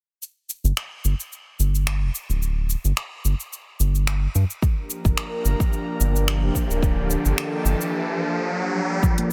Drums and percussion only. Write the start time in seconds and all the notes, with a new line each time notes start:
0.23 shaker
0.50 shaker
0.65 shaker
0.77 finger snap, shaker
1.05 shaker
1.20 shaker
1.33 shaker
1.60 shaker
1.75 shaker
1.87 finger snap, shaker
2.15 shaker
2.30 shaker
2.42 shaker
2.70 shaker
2.85 shaker
2.97 finger snap, shaker
3.25 shaker
3.40 shaker
3.53 shaker
3.80 shaker
3.95 shaker
4.07 finger snap, shaker
4.35 shaker
4.50 shaker
4.62 kick, shaker
4.90 shaker
5.05 kick, shaker
5.17 finger snap, shaker
5.45 shaker
5.60 kick, shaker
5.73 shaker
6.01 shaker
6.16 shaker
6.28 finger snap, shaker
6.55 kick, shaker
6.71 shaker
6.83 kick, shaker
7.10 shaker
7.25 shaker
7.38 finger snap, shaker
7.66 shaker
7.81 shaker
9.03 kick, shaker
9.18 closed hi-hat